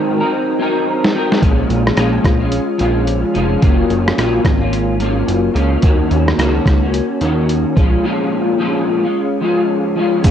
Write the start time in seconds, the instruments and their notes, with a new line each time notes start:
Already playing: clean electric guitar G#2 D#3 F#3 C4 D#4 A#4
0.20 clean electric guitar F#3 C4 D#4 A#4
0.59 clean electric guitar F#3 C4 D#4 A#4
1.04 snare
1.14 clean electric guitar F#3 C4 D#4 A#4
1.32 snare
1.41 analog synth bass A#1, clean electric guitar A#2 F3 G#3 C#4 F4, kick, closed hi-hat
1.69 analog synth bass A#1, closed hi-hat
1.87 cross-stick
1.96 analog synth bass A#1, clean electric guitar A#2 F3 G#3 C#4 F4, cross-stick, closed hi-hat
2.24 analog synth bass A#1, kick, cross-stick, closed hi-hat
2.40 clean electric guitar G#3 C#4 F4
2.52 closed hi-hat
2.78 analog synth bass A#1, clean electric guitar F3 G#3 C#4 F4, closed hi-hat
3.07 closed hi-hat
3.34 analog synth bass F1, clean electric guitar F3 G#3 C#4 F4, closed hi-hat
3.62 analog synth bass F#1, clean electric guitar F#3 A#3 C#4 F4, kick, closed hi-hat
3.90 analog synth bass F#1, closed hi-hat
4.08 cross-stick
4.17 analog synth bass A#1, clean electric guitar F#3 A#3 C#4 F4, cross-stick, closed hi-hat
4.45 analog synth bass G#1, kick, cross-stick, closed hi-hat
4.61 clean electric guitar C#4 F4
4.65 clean electric guitar A#3
4.73 closed hi-hat
5.00 clean electric guitar F#3 A#3 C#4 F4, closed hi-hat
5.28 analog synth bass F#1, closed hi-hat
5.54 analog synth bass C#2, clean electric guitar F#3 A#3 C#4 F4, closed hi-hat
5.82 analog synth bass D#2, clean electric guitar D#3 A#3 C#4 F#4, kick, closed hi-hat
6.11 analog synth bass D#2, closed hi-hat
6.28 cross-stick
6.38 analog synth bass C#2, clean electric guitar D#3 A#3 C#4 F#4, cross-stick, closed hi-hat
6.66 analog synth bass C#2, kick, cross-stick, closed hi-hat
6.82 clean electric guitar A#3 C#4 F#4
6.94 closed hi-hat
7.21 analog synth bass D#2, clean electric guitar D#3 A#3 C#4 F#4, closed hi-hat
7.49 closed hi-hat
7.76 analog synth bass A#1, clean electric guitar F3 G#3 C#4 F4, kick, closed hi-hat
8.03 clean electric guitar A#2 F3 G#3 C#4 F4
8.58 clean electric guitar A#2 F3 G#3 C#4 F4
9.03 clean electric guitar G#3 C#4 F4
9.41 clean electric guitar F3 G#3 C#4 F4
9.96 clean electric guitar F3 G#3 C#4 F4
10.24 analog synth bass A#1, clean electric guitar A#2 F3 G#3 C#4 F4, kick, closed hi-hat, shaker